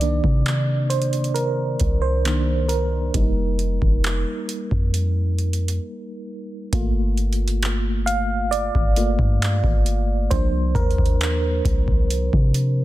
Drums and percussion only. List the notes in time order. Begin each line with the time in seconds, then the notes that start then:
0.01 closed hi-hat
0.24 kick
0.46 clap, closed hi-hat
0.90 closed hi-hat
1.02 closed hi-hat
1.13 closed hi-hat
1.24 closed hi-hat
1.36 closed hi-hat
1.80 kick, closed hi-hat
2.25 clap, closed hi-hat
2.69 closed hi-hat
3.14 kick, closed hi-hat
3.59 closed hi-hat
3.82 kick
4.04 clap, closed hi-hat
4.49 closed hi-hat
4.71 kick
4.94 closed hi-hat
5.39 closed hi-hat
5.53 closed hi-hat
5.68 closed hi-hat
6.73 kick, closed hi-hat
7.17 closed hi-hat
7.33 closed hi-hat
7.48 closed hi-hat
7.63 clap, closed hi-hat
8.07 closed hi-hat
8.53 closed hi-hat
8.75 kick
8.96 closed hi-hat
9.19 kick
9.42 clap, closed hi-hat
9.64 kick
9.86 closed hi-hat
10.31 kick, closed hi-hat
10.75 kick, closed hi-hat
10.91 closed hi-hat
10.98 kick
11.06 closed hi-hat
11.21 clap, closed hi-hat
11.65 kick, closed hi-hat
11.88 kick
12.10 closed hi-hat
12.33 kick
12.54 closed hi-hat